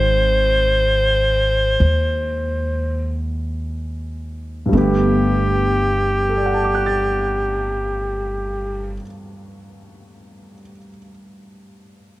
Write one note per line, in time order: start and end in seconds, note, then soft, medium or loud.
0.00 1.76 G#1 medium
0.00 4.70 D#3 soft
0.00 4.72 G#3 soft
0.00 4.74 C4 soft
0.00 4.76 F#4 soft
0.00 3.23 C5 medium
1.80 4.69 D#2 medium
4.66 8.93 G2 soft
4.66 8.96 G3 soft
4.72 8.97 G1 medium
4.72 9.00 A3 soft
4.72 9.02 B3 soft
4.77 9.01 G4 medium
4.77 9.05 G4 soft
6.29 10.53 A4 soft
6.37 10.60 D5 soft
6.46 10.69 F#5 soft
6.54 10.78 A5 soft
6.64 10.88 D6 soft
6.75 10.98 F#6 soft
6.86 11.10 A6 soft